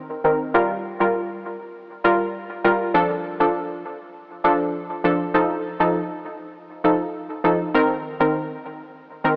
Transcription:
0.24 D#3 C4 A#4
0.54 G3 F4 A#4
1.00 G3 F4 A#4
2.04 G3 F4 A#4
2.64 G3 F4 A#4
2.94 F3 D4 A4
3.40 F3 D4 A4
4.44 F3 D4 A4
5.04 F3 D4 A4
5.34 F3 D#4 A4
5.80 F3 D#4 A4
6.84 F3 D#4 A4
7.44 F3 D#4 A4
7.74 D#3 C4 A#4
8.20 D#3 C4 A#4
9.24 D#3 C4 A#4

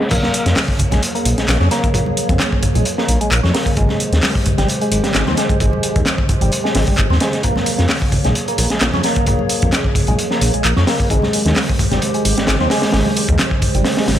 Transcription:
0.01 snare
0.11 A#1 F3 A#3 G#4 C#5, kick, closed hi-hat, crash
0.23 snare, high conga
0.34 closed hi-hat
0.46 F2, snare, closed hi-hat
0.56 snare, clap, closed hi-hat, open hi-hat, high conga
0.68 kick
0.79 kick, closed hi-hat, low conga
0.91 A#1 G#3, snare, closed hi-hat, high conga, low conga
1.02 closed hi-hat
1.15 A#3, closed hi-hat
1.25 A#1, closed hi-hat, high conga
1.38 A#1 G#3, snare, closed hi-hat
1.48 A#1 A#3, snare, clap, closed hi-hat
1.60 F2 C#4, snare, high conga
1.71 A#3, snare, closed hi-hat
1.84 kick, closed hi-hat
1.94 A#1 A#3, kick, closed hi-hat
2.06 high conga
2.17 closed hi-hat
2.29 F2, kick, closed hi-hat
2.40 snare, clap, closed hi-hat, high conga
2.52 kick
2.62 kick, closed hi-hat, low conga
2.74 A#1 G#3, closed hi-hat, high conga, low conga
2.85 closed hi-hat
2.98 A#3, snare
3.08 A#1, closed hi-hat, high conga
3.21 A#1 G#3, closed hi-hat
3.31 A#1 A#3, clap, closed hi-hat
3.43 F2 C#4, snare, high conga
3.54 A#3, snare, closed hi-hat, open hi-hat
3.66 kick, closed hi-hat
3.77 G#1 D#3 G#3 G4 C5, kick, closed hi-hat
3.89 snare, high conga
4.00 closed hi-hat
4.12 D#2, snare, closed hi-hat
4.23 snare, clap, closed hi-hat, open hi-hat, high conga
4.35 kick
4.46 kick, closed hi-hat, low conga
4.58 G#1 G3, snare, closed hi-hat, high conga, low conga
4.68 closed hi-hat
4.81 G#3, closed hi-hat
4.92 G#1, closed hi-hat, high conga
5.04 G#1 G3, snare, closed hi-hat
5.14 G#1 G#3, snare, clap, closed hi-hat
5.27 D#2 C4, snare, high conga
5.37 G#3, snare, closed hi-hat
5.49 kick, closed hi-hat
5.60 G#1 G#3, kick, closed hi-hat
5.73 high conga
5.83 closed hi-hat
5.96 D#2, kick, closed hi-hat
6.06 snare, clap, closed hi-hat, high conga
6.18 kick
6.29 kick, closed hi-hat, low conga
6.41 G#1 G3, closed hi-hat, high conga, low conga
6.52 closed hi-hat
6.64 G#3, snare
6.75 G#1, snare, closed hi-hat, open hi-hat, high conga
6.87 G#1 G3, kick, closed hi-hat
6.98 G#1 G#3, kick, clap, closed hi-hat
7.10 D#2 C4, snare, high conga
7.20 G#3, snare, closed hi-hat
7.33 snare, closed hi-hat
7.43 A#1 F3 A#3 G#4 C#5, kick, closed hi-hat
7.56 snare, high conga
7.66 closed hi-hat, open hi-hat
7.78 F2, snare, closed hi-hat
7.89 snare, clap, closed hi-hat, open hi-hat, high conga
8.02 kick
8.12 kick, closed hi-hat, open hi-hat, low conga
8.24 A#1 G#3, snare, closed hi-hat, high conga, low conga
8.35 closed hi-hat
8.48 A#3, closed hi-hat
8.58 A#1, closed hi-hat, open hi-hat, high conga
8.70 A#1 G#3, snare, closed hi-hat
8.81 A#1 A#3, snare, clap, closed hi-hat
8.93 F2 C#4, snare, high conga
9.03 A#3, snare, closed hi-hat, open hi-hat
9.16 kick, closed hi-hat
9.26 A#1 A#3, kick, closed hi-hat
9.39 high conga
9.49 closed hi-hat, open hi-hat
9.62 F2, kick, closed hi-hat
9.72 snare, clap, closed hi-hat, high conga
9.84 kick
9.95 kick, closed hi-hat, open hi-hat, low conga
10.07 A#1 G#3, closed hi-hat, high conga, low conga
10.19 closed hi-hat
10.31 A#3, snare
10.41 A#1, closed hi-hat, open hi-hat, high conga
10.54 A#1 G#3, closed hi-hat
10.64 A#1 A#3, clap, closed hi-hat
10.76 F2 C#4, snare, high conga
10.87 A#3, snare, open hi-hat
11.00 kick, closed hi-hat
11.10 G#1 D#3 G#3 G4 C5, kick, closed hi-hat
11.22 snare, high conga
11.33 closed hi-hat, open hi-hat
11.45 D#2, snare, closed hi-hat
11.55 snare, clap, closed hi-hat, open hi-hat, high conga
11.70 kick
11.79 kick, closed hi-hat, open hi-hat, low conga
11.91 G#1 G3, snare, closed hi-hat, high conga, low conga
12.02 closed hi-hat
12.14 G#3, closed hi-hat
12.25 G#1, closed hi-hat, open hi-hat, high conga
12.37 G#1 G3, snare, closed hi-hat
12.47 G#1 G#3, snare, clap, closed hi-hat
12.59 D#2 C4, snare, high conga
12.70 G#3, snare, open hi-hat
12.82 snare, closed hi-hat, open hi-hat
12.92 G#1 G#3, snare, closed hi-hat, open hi-hat
13.06 high conga
13.17 closed hi-hat, open hi-hat
13.29 D#2, kick, closed hi-hat
13.39 snare, clap, closed hi-hat, high conga
13.51 kick
13.62 kick, closed hi-hat, open hi-hat, low conga
13.74 G#1 G3, closed hi-hat, high conga, low conga
13.85 snare, closed hi-hat, open hi-hat
13.97 G#3, snare, open hi-hat
14.08 G#1, snare, open hi-hat, high conga

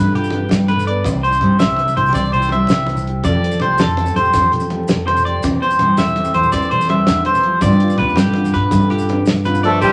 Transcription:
Already playing: G2 D3 G3 D4 F4 A4 B4
0.12 F4 G4, closed hi-hat, low conga
0.22 high conga, low conga, maracas
0.30 D4 B4, closed hi-hat, muted conga
0.49 G2 G3, snare, closed hi-hat, high conga, low conga, maracas
0.68 A3 B4, closed hi-hat, muted conga, low conga, maracas
0.76 high conga, low conga, maracas
0.87 B3 D5, closed hi-hat
1.04 C2 C3 C5, kick, closed hi-hat, muted conga, high conga, maracas
1.14 low conga
1.23 E4 C5, closed hi-hat
1.31 high conga, maracas
1.41 G2 G3 G4, closed hi-hat, muted conga, low conga
1.59 C2 C5 E5, snare, closed hi-hat, high conga, maracas
1.68 low conga
1.76 C3 E4, closed hi-hat, muted conga
1.85 high conga, maracas
1.97 C2 E4 C5, closed hi-hat
2.04 G4, low conga, maracas
2.13 C2 C3 D5, kick, closed hi-hat, muted conga, high conga, maracas
2.17 C5
2.32 E4 C5, closed hi-hat, low conga
2.40 high conga, maracas
2.49 E5, closed hi-hat, muted conga
2.54 G3 G4
2.59 low conga
2.67 C2 C5, snare, closed hi-hat, high conga, low conga, maracas
2.86 C3 E4, closed hi-hat, muted conga
2.95 high conga, low conga, maracas
3.05 G4, closed hi-hat, low conga
3.15 low conga
3.24 F2 F3 A3 D5, muted nylon-string guitar stroke, kick, closed hi-hat, muted conga, high conga, maracas
3.28 G4 A4
3.33 low conga
3.44 C4, closed hi-hat
3.51 high conga, maracas
3.60 C2 A3 G4 C5, closed hi-hat, muted conga, low conga
3.78 F2 A4, snare, closed hi-hat, high conga, maracas
3.87 low conga
3.97 C4, closed hi-hat, muted conga
4.06 high conga, maracas
4.16 F2 G4 C5, closed hi-hat
4.25 low conga, maracas
4.33 F2 F3 A4, kick, closed hi-hat, muted conga, high conga, maracas
4.42 maracas
4.52 C4, closed hi-hat, low conga
4.60 high conga, maracas
4.70 A3 G4, closed hi-hat, muted conga
4.80 low conga
4.88 F2 A4, snare, closed hi-hat, high conga, low conga, maracas
5.07 C3 C4 C5, closed hi-hat, muted conga
5.17 high conga, low conga, maracas
5.25 G4 D5, closed hi-hat, low conga
5.35 low conga
5.43 E2 E3 C5, kick, closed hi-hat, muted conga, high conga, maracas
5.53 low conga
5.62 C4 C5, closed hi-hat
5.70 high conga, maracas
5.79 G2 G3, closed hi-hat, muted conga, low conga
5.84 E4
5.97 E2 A4 E5, snare, closed hi-hat, high conga, maracas
6.07 low conga, maracas
6.16 E3 C4, closed hi-hat, muted conga
6.24 high conga, maracas
6.34 E2 E4 C5, closed hi-hat
6.43 low conga, maracas
6.52 E2 E3 A4 D5, kick, closed hi-hat, muted conga, high conga, maracas
6.62 maracas
6.71 C4 C5, closed hi-hat, low conga
6.81 high conga, maracas
6.89 G3 E4 E5, closed hi-hat, muted conga
6.99 low conga
7.07 E2 D3, snare, closed hi-hat, high conga, low conga, maracas
7.25 E3 C5, closed hi-hat, muted conga
7.34 high conga, low conga, maracas
7.43 F3, closed hi-hat
7.53 low conga
7.61 G2 G3 D4 F4 B4 D5, kick, closed hi-hat, muted conga, high conga, maracas
7.71 low conga, maracas
7.80 F4, closed hi-hat
7.88 high conga, low conga, maracas
7.98 D2 D4 B4, closed hi-hat, muted conga, low conga
8.09 maracas
8.16 G2 G4 A4, snare, closed hi-hat, high conga, maracas
8.26 low conga
8.33 D3 F4, closed hi-hat, muted conga
8.44 high conga, maracas
8.53 G2 B4, kick, snare, closed hi-hat
8.63 low conga
8.70 G2 G3 A4, kick, closed hi-hat, muted conga, high conga, maracas
8.81 maracas
8.89 F4 G4, closed hi-hat, low conga
8.98 high conga, low conga, maracas
9.09 D4 B4, closed hi-hat, muted conga
9.26 G2 B4, snare, closed hi-hat, high conga, low conga, maracas
9.45 D3 F4 B4, closed hi-hat, muted conga, maracas
9.55 low conga, maracas
9.63 F3 A3 A4 B4 D5, closed hi-hat
9.74 low conga
9.81 C2 C3 E3 G3 G4 C5, kick, closed hi-hat, muted conga, maracas

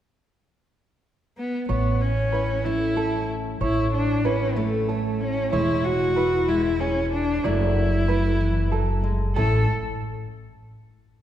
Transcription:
1.38 B3
1.69 A1 A2 B3 C#5
2.01 C#4
2.32 E4 B4
2.65 A3 C#4 E4
2.97 C#4 A4
3.61 A1 A2 E4 C#5
3.94 D4
4.25 C#4 E4 B4
4.56 A3 C#4
4.89 A4 C#5
5.21 C#4
5.53 E1 E3 G#3 E4 C#5
5.85 F#4
6.16 E4 B4
6.48 G#3 E4
6.80 C#4 G#4 B4
7.13 D4
7.44 F#1 F#3 A3 E4 D5
8.08 A3 B4
8.40 E3
8.72 F#3 A4
9.04 G#3
9.35 A1 A2 A3 C#4 E4 A4 C#5

